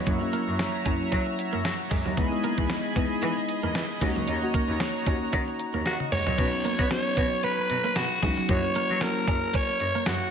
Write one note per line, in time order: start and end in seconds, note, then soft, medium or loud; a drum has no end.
0.00 2.13 F#4 medium
0.00 2.13 C#5 medium
0.06 0.15 F#2 loud
0.06 0.19 F#3 medium
0.06 0.18 F#3 medium
0.06 0.19 A#3 medium
0.06 0.19 C#4 medium
0.06 0.19 E4 loud
0.06 2.15 E5 medium
0.06 2.15 A#5 medium
0.06 kick loud
0.06 closed hi-hat medium
0.21 0.77 F#3 medium
0.21 0.77 A#3 medium
0.21 0.78 C#4 medium
0.21 0.78 E4 loud
0.21 muted clean electric guitar stroke soft
0.33 0.44 A#3 medium
0.33 closed hi-hat medium
0.48 0.56 F#2 medium
0.59 snare loud
0.59 closed hi-hat medium
0.59 tambourine medium
0.85 0.94 F#2 medium
0.85 1.77 F#3 medium
0.85 1.77 A#3 medium
0.85 0.97 C#4 medium
0.85 1.77 C#4 medium
0.85 1.78 E4 loud
0.85 kick medium
0.85 closed hi-hat medium
1.12 1.21 F#3 loud
1.12 1.23 C#4 medium
1.12 kick medium
1.12 closed hi-hat medium
1.26 muted clean electric guitar stroke soft
1.39 closed hi-hat medium
1.53 1.61 F#2 medium
1.53 1.62 A#3 medium
1.65 1.73 F#3 loud
1.65 muted clean electric guitar stroke soft
1.65 snare loud
1.65 closed hi-hat medium
1.65 tambourine medium
1.91 1.99 F#2 medium
1.91 2.02 G#3 medium
1.91 kick medium
1.91 open hi-hat medium
2.06 2.14 D#2 medium
2.06 2.15 F#3 medium
2.17 2.25 E2 loud
2.17 2.30 G#3 medium
2.17 2.29 G#3 medium
2.17 2.30 B3 medium
2.17 2.30 D#4 medium
2.17 2.30 E4 loud
2.17 3.99 G#4 medium
2.17 6.34 D#5 medium
2.17 3.99 G#5 medium
2.17 4.00 B5 medium
2.17 kick loud
2.17 closed hi-hat medium
2.31 2.87 G#3 loud
2.31 2.88 B3 medium
2.31 2.88 D#4 medium
2.31 2.88 E4 loud
2.31 muted clean electric guitar stroke soft
2.44 2.55 A#3 medium
2.44 closed hi-hat medium
2.58 2.66 E2 medium
2.58 kick medium
2.70 snare loud
2.70 closed hi-hat medium
2.70 tambourine medium
2.96 3.04 E2 medium
2.96 3.88 G#3 medium
2.96 3.88 B3 medium
2.96 3.08 B3 medium
2.96 3.88 D#4 medium
2.96 3.88 E4 medium
2.96 kick loud
2.96 closed hi-hat medium
3.22 3.31 E3 loud
3.22 3.34 B3 medium
3.22 closed hi-hat medium
3.37 muted clean electric guitar stroke soft
3.49 closed hi-hat medium
3.63 3.72 E2 medium
3.63 3.72 A#3 medium
3.75 3.83 E3 loud
3.75 muted clean electric guitar stroke soft
3.75 snare loud
3.75 closed hi-hat medium
3.75 tambourine medium
4.01 4.10 D#2 loud
4.01 4.13 G#3 medium
4.01 4.36 A#3 medium
4.01 4.36 C#4 medium
4.01 4.36 D#4 medium
4.01 6.36 F#4 medium
4.01 4.36 F#4 loud
4.01 6.36 C#5 medium
4.01 6.36 A#5 medium
4.01 kick loud
4.01 open hi-hat medium
4.16 4.24 C#2 medium
4.16 4.25 F#3 medium
4.28 4.36 D#2 loud
4.28 4.39 D#4 medium
4.28 closed hi-hat medium
4.42 4.98 A#3 medium
4.42 4.98 C#4 medium
4.42 4.99 D#4 medium
4.42 4.99 F#4 loud
4.42 muted clean electric guitar stroke soft
4.54 4.66 A#3 medium
4.54 kick medium
4.54 closed hi-hat medium
4.69 4.77 D#2 medium
4.80 snare loud
4.80 closed hi-hat medium
4.80 tambourine medium
5.06 5.15 D#2 medium
5.06 5.98 A#3 medium
5.06 5.98 C#4 medium
5.06 5.18 C#4 medium
5.06 5.98 D#4 medium
5.06 5.98 F#4 medium
5.06 kick medium
5.06 closed hi-hat medium
5.33 5.41 D#3 loud
5.33 5.45 C#4 medium
5.33 kick medium
5.33 closed hi-hat medium
5.48 muted clean electric guitar stroke soft
5.59 5.84 A#5 medium
5.59 closed hi-hat medium
5.74 5.82 D#2 medium
5.74 5.83 A#3 medium
5.86 5.94 D#3 loud
5.86 5.98 F#4 medium
5.86 5.99 F#5 medium
5.86 muted clean electric guitar stroke soft
5.86 snare medium
5.86 closed hi-hat medium
6.00 6.36 D#5 medium
6.00 high tom medium
6.12 6.20 D#2 medium
6.12 6.23 G#3 medium
6.12 6.87 C#5 loud
6.12 mid tom medium
6.12 open hi-hat medium
6.27 6.35 A#2 medium
6.27 6.36 F#3 medium
6.27 floor tom medium
6.38 6.46 B2 loud
6.38 6.84 F#3 medium
6.38 6.84 B3 medium
6.38 6.50 B3 medium
6.38 6.85 C#4 medium
6.38 6.85 D#4 medium
6.38 6.85 F#4 medium
6.38 kick loud
6.38 closed hi-hat medium
6.38 crash loud
6.53 muted clean electric guitar stroke soft
6.65 6.76 A#3 medium
6.65 closed hi-hat medium
6.79 6.87 B3 loud
6.79 kick medium
6.90 7.82 F#3 medium
6.90 7.82 B3 medium
6.90 7.82 C#4 medium
6.90 7.83 D#4 medium
6.90 7.83 F#4 medium
6.90 7.46 C#5 loud
6.90 snare loud
6.90 closed hi-hat loud
6.90 tambourine medium
7.17 7.25 B2 medium
7.17 7.29 B3 medium
7.17 kick medium
7.17 closed hi-hat medium
7.43 7.55 B3 medium
7.43 7.98 B4 loud
7.43 closed hi-hat medium
7.59 muted clean electric guitar stroke soft
7.70 7.78 B2 medium
7.70 closed hi-hat medium
7.84 7.93 A#3 medium
7.96 8.04 B2 loud
7.96 8.23 F#4 loud
7.96 muted clean electric guitar stroke soft
7.96 snare loud
7.96 closed hi-hat loud
7.96 tambourine medium
8.22 8.31 E2 medium
8.22 8.45 F#3 medium
8.22 8.34 G#3 medium
8.22 8.45 B3 medium
8.22 8.45 C#4 medium
8.22 8.46 D#4 medium
8.22 8.46 F#4 medium
8.22 8.52 F#4 medium
8.22 kick loud
8.22 open hi-hat medium
8.38 8.46 F#3 medium
8.48 8.57 F#2 loud
8.48 8.94 F#3 medium
8.48 8.60 F#3 medium
8.48 8.95 A#3 medium
8.48 8.95 C#4 medium
8.48 8.95 E4 medium
8.48 8.95 F#4 medium
8.48 9.04 C#5 loud
8.48 kick loud
8.48 closed hi-hat medium
8.64 muted clean electric guitar stroke soft
8.75 8.87 A#3 medium
8.75 closed hi-hat medium
8.90 8.98 F#3 loud
9.01 9.93 F#3 medium
9.01 9.93 A#3 medium
9.01 9.93 C#4 medium
9.01 9.93 E4 medium
9.01 9.93 F#4 medium
9.01 9.57 A#4 loud
9.01 snare loud
9.01 closed hi-hat loud
9.01 tambourine medium
9.28 9.36 F#2 medium
9.28 9.39 C#4 medium
9.28 kick loud
9.28 closed hi-hat medium
9.54 9.66 C#4 medium
9.54 10.09 C#5 loud
9.54 kick loud
9.54 closed hi-hat medium
9.69 muted clean electric guitar stroke soft
9.80 9.89 F#2 medium
9.80 closed hi-hat medium
9.95 10.04 A#3 medium
10.06 10.15 F#2 loud
10.06 10.31 F#4 loud
10.06 muted clean electric guitar stroke soft
10.06 snare loud
10.06 closed hi-hat medium
10.06 tambourine medium